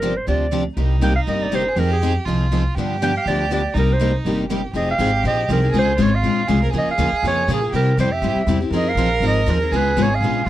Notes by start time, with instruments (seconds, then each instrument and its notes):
Already playing: upright bass G1, clarinet A#4
0.02 steel-string acoustic guitar C3 F3 C4 D4 G4
0.17 clarinet C5
0.27 upright bass D2, steel-string acoustic guitar C3 F3 C4 D4 G4, clarinet D5
0.52 steel-string acoustic guitar C3 F3 C4 D4 G4
0.76 upright bass C2, steel-string acoustic guitar C3 G3 A#3 D#4 G4, violin D#4
1.01 steel-string acoustic guitar C3 G3 A#3 D#4 G4, clarinet G5
1.16 clarinet F5
1.27 upright bass G1, steel-string acoustic guitar C3 G3 A#3 D#4 G4, clarinet D#5
1.43 clarinet D5
1.52 steel-string acoustic guitar C3 G3 A#3 D#4 G4, clarinet C5
1.69 violin G#4
1.76 upright bass F2, steel-string acoustic guitar F3 C4 D#4 G#4, violin G4, clarinet A#4
1.93 clarinet G#4
2.03 steel-string acoustic guitar F3 C4 D#4 G#4
2.26 upright bass C2, steel-string acoustic guitar F3 C4 D#4 G#4, violin F4
2.52 steel-string acoustic guitar F3 C4 D#4 G#4
2.75 upright bass G2, steel-string acoustic guitar D3 F3 B3 D4, violin G4
2.80 steel-string acoustic guitar G4
3.02 steel-string acoustic guitar D3 F3 B3 D4 G4, clarinet G5
3.17 clarinet F5
3.26 upright bass D2, steel-string acoustic guitar D3 F3 B3 D4 G4, clarinet D5
3.51 steel-string acoustic guitar D3 F3 B3 D4 G4, clarinet D5
3.74 upright bass C2, steel-string acoustic guitar C3 G3 A#3 D#4 G4, violin D#4
3.79 clarinet A#4
3.93 clarinet C5
4.00 steel-string acoustic guitar C3 G3 A#3 D#4 G4
4.25 upright bass G1, steel-string acoustic guitar C3 G3 A#3 D#4 G4
4.49 steel-string acoustic guitar C3 G3 A#3 D#4 G4, violin G4
4.73 upright bass F1, steel-string acoustic guitar F3 C4 D#4 G#4, violin G4, clarinet D#5
4.91 clarinet F5
4.99 upright bass G#1, steel-string acoustic guitar F3 C4 D#4 G#4
5.24 upright bass A#1, steel-string acoustic guitar F3 C4 D#4 G#4, clarinet D#5
5.49 upright bass C2, steel-string acoustic guitar F3 C4 D#4 G#4, clarinet A#4
5.62 steel-string acoustic guitar C4 D#4 G#4
5.72 upright bass C#2, steel-string acoustic guitar C#3 G#3 C4 F4 G#4, violin G#4
5.79 clarinet C5
5.98 upright bass G#1, steel-string acoustic guitar C#3 G#3 C4 F4 G#4, violin F4
6.03 clarinet C#5
6.15 clarinet F5
6.23 upright bass A#1, steel-string acoustic guitar C#3 G#3 C4 F4 G#4
6.48 upright bass C2, steel-string acoustic guitar C#3 G#3 C4 F4 G#4, violin G#4
6.62 steel-string acoustic guitar C4 F4 G#4, violin A#4
6.73 upright bass C#2, steel-string acoustic guitar C#3 F3 A#3 F4 G#4, violin G#4
6.78 clarinet D#5
6.87 clarinet F5, muted upright bass stroke
6.98 upright bass D#2, steel-string acoustic guitar C#3 F3 A#3 F4 G#4
7.12 muted upright bass stroke
7.23 upright bass F2, steel-string acoustic guitar C#3 F3 A#3 F4 G#4
7.28 clarinet C#5
7.48 upright bass A#2, steel-string acoustic guitar C#3 F3 A#3 F4 G#4
7.53 clarinet G#4
7.61 steel-string acoustic guitar A#3 F4 G#4
7.72 upright bass C3, steel-string acoustic guitar C3 G3 C4 E4 G4, violin G4, clarinet A#4
7.97 upright bass F2, steel-string acoustic guitar C3 G3 C4 E4 G4, violin G4, clarinet C5
8.12 clarinet E5
8.22 upright bass G2, steel-string acoustic guitar C3 G3 C4 E4 G4
8.36 muted upright bass stroke
8.47 upright bass E2, steel-string acoustic guitar C3 G3 C4 E4 G4
8.60 steel-string acoustic guitar C4 E4 G4
8.70 upright bass F2, steel-string acoustic guitar F3 C4 D#4 G#4, violin A#4
8.76 clarinet D#5
8.89 clarinet F5
8.95 upright bass A#1, steel-string acoustic guitar F3 C4 D#4 G#4
9.20 upright bass G#1, steel-string acoustic guitar F3 C4 D#4 G#4
9.27 clarinet D#5
9.46 upright bass D#2, steel-string acoustic guitar F3 C4 D#4 G#4
9.51 clarinet A#4
9.61 steel-string acoustic guitar C4 D#4 G#4
9.71 upright bass C#2, steel-string acoustic guitar C#3 G#3 B3 F4 G#4, violin G#4
9.76 clarinet B4
9.96 upright bass G#1, steel-string acoustic guitar C#3 G#3 B3 F4 G#4
10.02 clarinet C#5
10.15 clarinet F5
10.21 upright bass A#1, steel-string acoustic guitar C#3 G#3 B3 F4 G#4
10.46 upright bass B1, violin F4